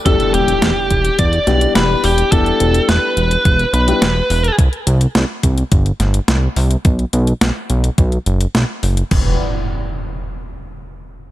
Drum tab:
CC |----------------|----------------|----------------|----------------|
HH |xxxxx-xxxxxxx-ox|xxxxx-xxxxxxx-ox|xxxxx-xxxxxxx-ox|xxxxx-xxxxxxx-ox|
SD |----o-----o-o---|----o-------o---|----o-----o-o---|----o-------o---|
BD |o-----o-o-------|o-------o-------|o-----o-o-------|o-------o-------|

CC |x---------------|
HH |----------------|
SD |----------------|
BD |o---------------|